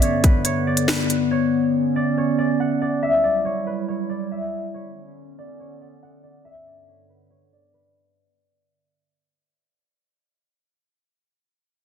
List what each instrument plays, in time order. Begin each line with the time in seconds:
Already playing: ambient pad G2 D3 B3, harp E5 F#5
0.02 harp C#5, closed hi-hat
0.24 harp B4, kick, closed hi-hat
0.45 harp C#5, closed hi-hat
0.67 harp D5
0.77 closed hi-hat
0.88 harp B4, finger snap, snare
1.10 closed hi-hat
1.31 ambient pad C#4, harp C#5
1.96 harp D5
2.18 harp C#5
2.38 harp D5
2.60 harp F#5
2.82 harp D5
3.02 ambient pad F#3 G3 E4, harp E5
3.24 harp D5
3.45 harp C#5
3.67 harp B4
3.88 harp C#5
4.09 harp D5
4.32 harp E5
4.74 ambient pad D3 B3 C#4, harp C#5
5.39 harp D5
5.60 harp C#5
5.81 harp D5
6.03 harp F#5
6.23 harp D5
6.45 ambient pad G2 D3, harp E5
6.66 harp D5
6.88 harp C#5
7.09 harp B4
7.30 harp C#5
7.53 harp D5
7.74 harp B4